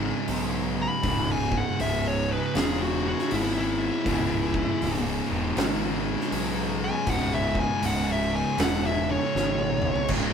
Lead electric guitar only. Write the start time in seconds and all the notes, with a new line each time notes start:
0.82 B5
1.32 G#5
1.57 F#5
1.81 E5
2.08 C#5
2.32 B4
2.56 G#4
2.83 F#4
3.08 F#4
3.33 E4
3.59 E4
6.84 G#5
7.10 F#5
7.35 E5
7.60 G#5
7.86 F#5
8.12 E5
8.35 G#5
8.60 F#5
8.86 E5
9.11 C#5